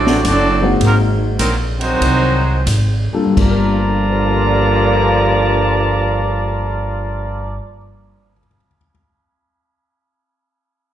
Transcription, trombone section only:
0.00 0.23 F#3 loud
0.00 0.23 A3 loud
0.00 0.22 D4 loud
0.27 0.69 F#3 medium
0.27 0.69 A3 medium
0.27 0.70 D4 medium
0.83 0.91 A#3 medium
1.39 1.55 A#3 medium
1.80 2.63 D#3 medium
1.80 2.63 F#3 loud
1.80 2.63 C4 loud
3.37 7.58 G2 loud
3.37 7.58 D3 loud
3.37 7.58 F3 loud
3.37 7.58 A#3 loud

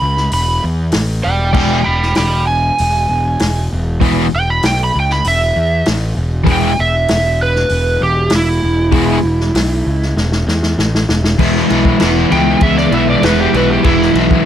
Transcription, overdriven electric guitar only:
1.53 1.79 E3 medium
1.53 1.79 G#3 loud
1.53 1.79 B3 medium
1.53 1.79 E4 medium
1.53 1.79 G#4 loud
4.01 4.25 E3 medium
4.01 4.26 G#3 medium
4.01 4.26 B3 loud
4.01 4.26 E4 loud
4.01 4.26 G#4 medium
6.44 6.70 E3 medium
6.44 6.71 G#3 medium
6.44 6.71 B3 medium
6.44 6.71 E4 loud
6.44 6.71 G#4 medium
8.92 9.17 E3 medium
8.92 9.17 G#3 medium
8.92 9.17 B3 loud
8.92 9.18 E4 loud
8.92 9.18 G#4 loud
11.39 11.69 E3 medium
11.39 11.69 G#3 medium
11.39 11.70 B3 medium
11.39 11.70 E4 loud
11.69 11.99 E3 medium
11.69 12.00 G#3 medium
11.69 12.00 B3 medium
11.69 12.00 E4 medium
11.99 12.30 E3 medium
11.99 12.31 G#3 medium
11.99 12.31 B3 medium
11.99 12.31 E4 medium
12.30 12.62 E3 medium
12.30 12.61 G#3 medium
12.30 12.62 B3 medium
12.30 12.63 E4 medium
12.63 12.91 E3 medium
12.63 12.91 G#3 loud
12.63 12.92 B3 loud
12.63 12.93 E4 loud
12.91 13.21 E3 medium
12.91 13.21 G#3 medium
12.91 13.21 B3 medium
12.91 13.23 E4 medium
13.21 13.52 E3 loud
13.21 13.52 G#3 medium
13.21 13.53 B3 loud
13.21 13.54 E4 medium
13.53 13.82 E3 medium
13.53 13.81 G#3 medium
13.53 13.82 B3 loud
13.53 13.84 E4 loud
13.82 14.11 E3 medium
13.82 14.11 G#3 medium
13.82 14.12 B3 loud
13.82 14.13 E4 loud
14.12 14.43 E3 medium
14.12 14.43 G#3 medium
14.12 14.44 B3 medium
14.12 14.45 E4 loud

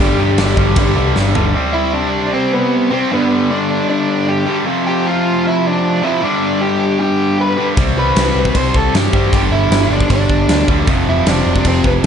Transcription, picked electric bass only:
0.00 0.16 G1 medium
0.18 0.35 G2 medium
0.38 0.55 G1 loud
0.57 0.74 G1 medium
0.77 0.94 G1 loud
0.97 1.14 C2 medium
1.16 1.33 G1 medium
1.36 1.53 G1 medium
7.77 7.90 C2 medium
7.97 8.09 C2 medium
8.16 8.29 C2 medium
8.35 8.48 C2 medium
8.55 8.68 C2 medium
8.75 8.88 C2 medium
8.94 9.07 G2 medium
9.13 9.26 G2 medium
9.33 9.46 G1 loud
9.51 9.64 G1 medium
9.70 9.84 G1 medium
9.90 10.03 G1 medium
10.10 10.23 G1 medium
10.30 10.43 G1 medium
10.48 10.61 D2 medium
10.69 10.81 D2 medium
10.88 11.00 F1 loud
11.07 11.20 F1 medium
11.27 11.40 F1 medium
11.46 11.59 F1 medium
11.65 11.78 F1 medium
11.84 11.97 F1 medium

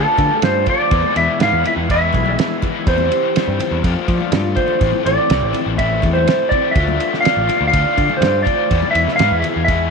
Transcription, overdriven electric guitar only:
0.00 0.42 D3 medium
0.00 0.18 A3 medium
0.00 0.18 D4 medium
0.00 0.16 F4 medium
0.17 0.68 A3 soft
0.17 0.66 D4 soft
0.17 0.65 F4 medium
0.67 0.90 A3 medium
0.67 0.90 D4 medium
0.67 0.89 F4 medium
0.90 1.39 E2 medium
0.90 1.39 B2 medium
0.90 1.16 E3 medium
0.90 1.15 G#3 medium
0.90 1.15 B3 medium
0.90 1.14 E4 medium
1.15 1.38 E3 medium
1.15 1.38 G#3 soft
1.15 1.39 B3 medium
1.15 1.40 E4 medium
1.39 1.65 E3 medium
1.39 1.65 G#3 medium
1.39 1.63 B3 medium
1.39 1.62 E4 medium
1.64 1.88 E3 medium
1.64 1.88 G#3 medium
1.64 1.89 B3 medium
1.64 1.89 E4 medium
1.88 2.37 E2 medium
1.88 2.37 B2 medium
1.88 2.14 E3 medium
1.88 2.13 G#3 medium
1.88 2.12 B3 loud
1.88 2.11 E4 medium
2.12 2.63 E3 soft
2.12 2.62 G#3 soft
2.12 2.62 B3 medium
2.12 2.61 E4 medium
2.62 2.84 E3 medium
2.62 2.85 G#3 medium
2.62 2.85 B3 medium
2.62 2.84 E4 medium
2.85 3.33 E3 medium
2.85 3.11 G3 medium
2.85 3.10 C4 medium
2.85 3.09 E4 medium
3.10 3.33 G3 medium
3.10 3.35 C4 medium
3.10 3.35 E4 medium
3.34 3.81 E3 medium
3.34 3.59 G3 medium
3.34 3.58 C4 medium
3.34 3.57 E4 medium
3.58 3.83 G3 medium
3.58 3.82 C4 medium
3.58 3.81 E4 medium
3.82 4.31 F3 medium
3.82 4.09 A3 medium
3.82 4.07 D4 medium
3.82 4.06 F4 medium
4.07 4.56 A3 soft
4.07 4.55 D4 medium
4.07 4.54 F4 medium
4.55 4.79 A3 soft
4.55 4.79 D4 medium
4.55 4.78 F4 medium
4.79 5.28 A2 medium
4.79 5.27 E3 medium
4.79 5.05 A3 medium
4.79 5.03 C4 medium
4.79 5.02 E4 medium
5.03 5.28 A3 medium
5.03 5.29 C4 medium
5.03 5.29 E4 medium
5.28 5.76 E3 medium
5.28 5.54 A3 medium
5.28 5.52 C4 medium
5.28 5.51 E4 medium
5.52 5.76 A3 medium
5.52 5.77 C4 medium
5.52 5.78 E4 medium
5.76 6.26 A2 medium
5.76 6.26 E3 medium
5.76 6.04 A3 medium
5.76 6.02 C4 medium
5.76 6.01 E4 medium
6.02 6.51 A3 soft
6.02 6.51 C4 medium
6.02 6.49 E4 medium
6.50 6.73 A3 medium
6.50 6.74 C4 medium
6.50 6.73 E4 medium
6.73 7.22 D3 medium
6.73 6.99 A3 medium
6.73 6.98 D4 medium
6.73 6.97 F4 medium
6.98 7.22 A3 medium
6.98 7.24 D4 medium
6.98 7.24 F4 medium
7.23 7.71 D3 medium
7.23 7.48 A3 medium
7.23 7.47 D4 medium
7.23 7.46 F4 medium
7.47 7.72 A3 medium
7.47 7.72 D4 medium
7.47 7.72 F4 medium
7.72 8.21 D3 medium
7.72 7.97 A3 medium
7.72 7.96 D4 medium
7.72 7.95 F4 loud
7.96 8.45 A3 medium
7.96 8.44 D4 medium
7.96 8.43 F4 medium
8.44 8.69 A3 medium
8.44 8.68 D4 medium
8.44 8.68 F4 medium
8.70 9.18 E2 medium
8.70 9.19 B2 medium
8.70 8.95 E3 medium
8.70 8.94 G#3 medium
8.70 8.93 B3 medium
8.70 8.92 E4 medium
8.94 9.15 E3 medium
8.94 9.16 G#3 medium
8.94 9.18 B3 medium
8.94 9.17 E4 medium
9.17 9.43 E3 medium
9.17 9.42 G#3 medium
9.17 9.41 B3 medium
9.17 9.40 E4 medium
9.42 9.67 E3 medium
9.42 9.67 G#3 medium
9.42 9.68 B3 medium
9.42 9.68 E4 medium
9.67 9.90 E2 medium
9.67 9.90 B2 medium
9.67 9.90 E3 medium
9.67 9.90 G#3 medium
9.67 9.90 B3 medium
9.67 9.90 E4 medium

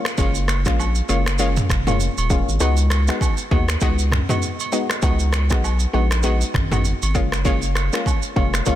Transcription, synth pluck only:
0.00 0.16 G#3 medium
0.00 0.16 A#3 medium
0.00 0.16 C#4 medium
0.00 0.16 F4 medium
0.18 0.36 G#3 medium
0.18 0.36 A#3 medium
0.18 0.36 C#4 medium
0.18 0.37 F4 loud
0.66 0.80 G#3 medium
0.66 0.80 A#3 medium
0.66 0.80 C#4 medium
0.66 0.80 F4 medium
1.09 1.27 G#3 medium
1.09 1.27 A#3 medium
1.09 1.27 C#4 medium
1.09 1.28 F4 medium
1.39 1.83 G#3 medium
1.39 1.83 A#3 medium
1.39 1.83 C#4 medium
1.39 1.83 F4 loud
1.87 2.01 G#3 medium
1.87 2.01 A#3 medium
1.87 2.01 C#4 medium
1.87 2.01 F4 medium
2.30 2.48 G#3 medium
2.30 2.49 A#3 medium
2.30 2.49 C#4 medium
2.30 2.49 F4 medium
2.60 2.79 G#3 medium
2.60 2.79 B3 medium
2.60 2.79 D#4 medium
2.60 2.79 F#4 loud
3.08 3.22 G#3 medium
3.08 3.22 B3 medium
3.08 3.22 D#4 medium
3.08 3.22 F#4 medium
3.51 3.70 G#3 medium
3.51 3.70 B3 medium
3.51 3.70 D#4 medium
3.51 3.70 F#4 medium
3.81 4.25 G#3 loud
3.81 4.25 B3 medium
3.81 4.25 D#4 medium
3.81 4.26 F#4 loud
4.29 4.43 G#3 medium
4.29 4.43 B3 medium
4.29 4.43 D#4 medium
4.29 4.43 F#4 medium
4.72 4.91 G#3 medium
4.72 4.91 B3 medium
4.72 4.91 D#4 medium
4.72 4.91 F#4 medium
5.02 5.21 G#3 medium
5.02 5.21 B3 medium
5.02 5.21 D#4 medium
5.02 5.21 F#4 loud
5.50 5.64 G#3 medium
5.50 5.64 B3 medium
5.50 5.65 D#4 medium
5.50 5.65 F#4 medium
5.93 6.12 G#3 medium
5.93 6.12 B3 medium
5.93 6.12 D#4 medium
5.93 6.12 F#4 medium
6.23 6.67 G#3 loud
6.23 6.68 B3 medium
6.23 6.68 D#4 medium
6.23 6.68 F#4 loud
6.71 7.12 G#3 medium
6.71 7.12 B3 medium
6.71 7.12 D#4 medium
6.71 7.12 F#4 medium
7.15 7.43 G#3 medium
7.15 7.43 A#3 medium
7.15 7.43 C#4 medium
7.15 7.43 F4 medium
7.45 7.63 G#3 medium
7.45 7.64 A#3 medium
7.45 7.64 C#4 medium
7.45 7.64 F4 loud
7.93 8.07 G#3 medium
7.93 8.07 A#3 medium
7.93 8.07 C#4 medium
7.93 8.07 F4 medium
8.36 8.54 G#3 medium
8.36 8.54 A#3 medium
8.36 8.55 C#4 medium
8.36 8.55 F4 medium
8.66 8.75 G#3 medium
8.66 8.75 A#3 medium
8.66 8.75 C#4 medium
8.66 8.75 F4 loud

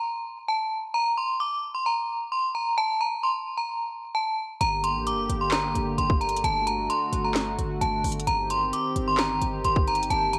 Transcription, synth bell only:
0.00 0.45 A#5 medium
0.48 0.67 A5 medium
0.94 1.13 A#5 loud
1.18 1.36 C6 medium
1.40 1.72 D6 medium
1.75 1.84 C6 medium
1.86 2.29 A#5 medium
2.32 2.51 C6 medium
2.55 2.74 A#5 medium
2.78 2.96 A5 loud
3.01 3.19 A#5 medium
3.23 3.56 C6 medium
3.58 4.11 A#5 medium
4.15 4.34 A5 medium
4.61 4.80 A#5 loud
4.84 5.03 C6 medium
5.07 5.39 D6 medium
5.41 5.50 C6 medium
5.52 5.95 A#5 medium
5.98 6.17 C6 medium
6.21 6.40 A#5 medium
6.44 6.63 A5 loud
6.67 6.86 A#5 medium
6.90 7.22 C6 medium
7.24 7.78 A#5 medium
7.81 8.00 A5 medium
8.27 8.46 A#5 loud
8.50 8.69 C6 medium
8.73 9.05 D6 medium
9.08 9.17 C6 medium
9.19 9.62 A#5 medium
9.65 9.84 C6 medium
9.88 10.06 A#5 medium
10.10 10.29 A5 loud
10.33 10.39 A#5 medium

